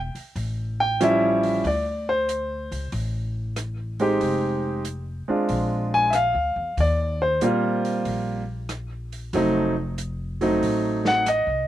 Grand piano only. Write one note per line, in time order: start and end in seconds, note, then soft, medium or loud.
0.80 1.00 G5 medium
1.00 1.65 F3 medium
1.00 1.65 G3 medium
1.00 1.65 C#4 medium
1.00 1.66 E4 medium
1.00 1.62 E5 medium
1.67 2.08 D5 medium
2.09 2.90 C5 medium
4.00 4.81 G#3 medium
4.00 4.81 C4 medium
4.00 4.82 D#4 medium
4.00 4.82 G4 medium
5.28 6.09 G#3 soft
5.28 6.10 C4 soft
5.28 6.10 D4 soft
5.28 6.10 F4 medium
5.94 6.14 G#5 loud
6.10 6.15 E5 medium
6.15 6.74 F5 medium
6.80 7.21 D5 medium
7.22 8.02 C5 medium
7.42 8.40 G3 medium
7.42 8.41 A#3 medium
7.42 8.41 C4 medium
7.42 8.41 F4 medium
9.34 9.73 F#3 medium
9.34 9.73 A3 medium
9.34 9.73 C4 medium
9.34 9.74 D#4 medium
10.41 11.22 F#3 medium
10.41 11.22 A3 soft
10.41 11.22 C4 medium
10.41 11.23 D#4 medium
11.07 11.27 F#5 medium
11.28 11.68 D#5 medium